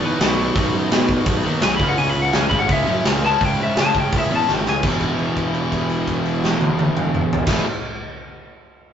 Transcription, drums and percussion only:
0.20 snare, open hi-hat
0.55 kick, open hi-hat
0.91 snare, open hi-hat
1.09 kick
1.26 kick, open hi-hat
1.61 snare, open hi-hat
1.79 kick
1.97 open hi-hat
2.33 snare, open hi-hat
2.51 kick
2.69 kick, open hi-hat
3.05 snare, open hi-hat
3.41 kick, open hi-hat
3.76 snare, open hi-hat
3.95 kick
4.13 kick, open hi-hat
4.48 snare
4.66 snare
4.83 kick, crash
5.01 kick, crash
5.19 crash
5.37 kick, crash
5.54 crash
5.72 kick, crash
5.90 crash
6.07 kick, crash
6.26 crash
6.44 snare
6.61 high tom
6.79 high tom
6.97 mid tom
7.14 mid tom
7.33 floor tom
7.47 kick, snare, crash

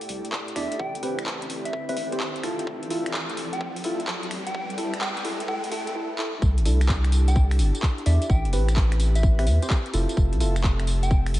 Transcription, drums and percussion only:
0.01 open hi-hat
0.09 open hi-hat
0.25 closed hi-hat
0.32 kick, clap
0.48 closed hi-hat
0.56 finger snap, open hi-hat
0.72 closed hi-hat
0.79 kick
0.95 closed hi-hat
1.03 open hi-hat
1.19 finger snap, closed hi-hat
1.26 kick, clap
1.42 closed hi-hat
1.50 open hi-hat
1.65 closed hi-hat
1.73 kick
1.89 open hi-hat
1.97 open hi-hat
2.12 closed hi-hat
2.20 kick, clap
2.36 closed hi-hat
2.43 finger snap, open hi-hat
2.59 closed hi-hat
2.67 kick
2.83 closed hi-hat
2.90 open hi-hat
3.06 finger snap, closed hi-hat
3.14 kick, clap
3.30 closed hi-hat
3.37 open hi-hat
3.53 closed hi-hat
3.61 kick
3.76 open hi-hat
3.84 open hi-hat
4.00 closed hi-hat
4.07 kick, clap
4.23 closed hi-hat
4.31 finger snap, open hi-hat
4.47 closed hi-hat
4.54 kick
4.70 closed hi-hat
4.78 open hi-hat
4.94 finger snap, closed hi-hat
5.01 kick, clap
5.17 closed hi-hat
5.25 open hi-hat
5.40 closed hi-hat
5.48 kick
5.64 open hi-hat
5.72 open hi-hat
5.87 closed hi-hat
6.19 clap
6.42 kick, tambourine
6.58 closed hi-hat
6.65 open hi-hat, tambourine
6.81 finger snap, closed hi-hat, tambourine
6.89 kick, clap, tambourine
7.04 finger snap, closed hi-hat
7.12 open hi-hat, tambourine
7.28 closed hi-hat, tambourine
7.36 kick, tambourine
7.51 finger snap, open hi-hat
7.59 open hi-hat, tambourine
7.75 closed hi-hat, tambourine
7.83 kick, clap, tambourine
7.98 closed hi-hat
8.06 open hi-hat, tambourine
8.22 closed hi-hat, tambourine
8.29 kick, tambourine
8.45 closed hi-hat
8.53 open hi-hat, tambourine
8.69 finger snap, closed hi-hat, tambourine
8.76 kick, clap, tambourine
8.92 finger snap, closed hi-hat
9.00 open hi-hat, tambourine
9.15 closed hi-hat, tambourine
9.23 kick, tambourine
9.39 finger snap, open hi-hat
9.47 open hi-hat, tambourine
9.62 closed hi-hat, tambourine
9.70 kick, clap, tambourine
9.86 closed hi-hat
9.93 open hi-hat, tambourine
10.09 closed hi-hat, tambourine
10.17 kick, tambourine
10.33 closed hi-hat
10.40 open hi-hat, tambourine
10.56 finger snap, closed hi-hat, tambourine
10.64 kick, clap, tambourine
10.80 finger snap, closed hi-hat
10.87 open hi-hat, tambourine
11.03 closed hi-hat, tambourine
11.11 kick, tambourine
11.26 finger snap, open hi-hat
11.34 open hi-hat, tambourine

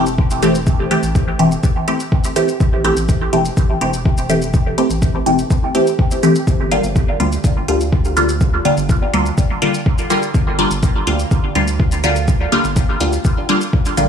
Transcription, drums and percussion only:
0.06 shaker
0.18 kick
0.30 shaker
0.43 closed hi-hat, shaker
0.55 shaker
0.67 kick, shaker
0.91 closed hi-hat
1.03 shaker
1.15 kick, shaker
1.39 closed hi-hat
1.51 shaker
1.63 kick, shaker
1.88 closed hi-hat
2.00 shaker
2.12 kick
2.24 shaker
2.36 closed hi-hat, shaker
2.48 shaker
2.60 kick, shaker
2.84 closed hi-hat
2.97 shaker
3.09 kick, shaker
3.33 closed hi-hat
3.45 shaker
3.57 kick, shaker
3.81 closed hi-hat
3.93 shaker
4.05 kick
4.18 shaker
4.30 closed hi-hat, shaker
4.42 shaker
4.54 kick, shaker
4.78 closed hi-hat
4.90 shaker
5.02 kick, shaker
5.26 closed hi-hat
5.39 shaker
5.51 kick, shaker
5.75 closed hi-hat
5.87 shaker
5.99 kick
6.11 shaker
6.23 closed hi-hat, shaker
6.35 shaker
6.47 kick, shaker
6.72 closed hi-hat
6.84 shaker
6.96 kick, shaker
7.20 closed hi-hat
7.32 shaker
7.44 kick, shaker
7.68 closed hi-hat
7.80 shaker
7.93 kick
8.05 shaker
8.17 closed hi-hat, shaker
8.29 shaker
8.41 kick, shaker
8.65 closed hi-hat
8.77 shaker
8.89 kick, shaker
9.14 closed hi-hat
9.26 shaker
9.38 kick, shaker
9.62 closed hi-hat
9.74 shaker
9.86 kick
9.98 shaker
10.10 closed hi-hat, shaker
10.22 shaker
10.34 kick, shaker
10.59 closed hi-hat
10.71 shaker
10.83 kick, shaker
11.07 closed hi-hat
11.19 shaker
11.31 kick, shaker
11.55 closed hi-hat
11.67 shaker
11.80 kick
11.92 shaker
12.04 closed hi-hat, shaker
12.16 shaker
12.28 kick, shaker
12.52 closed hi-hat
12.64 shaker
12.76 kick, shaker
13.01 closed hi-hat, shaker
13.13 shaker
13.25 kick, shaker
13.49 closed hi-hat
13.61 shaker
13.73 kick
13.85 shaker
13.97 closed hi-hat, shaker

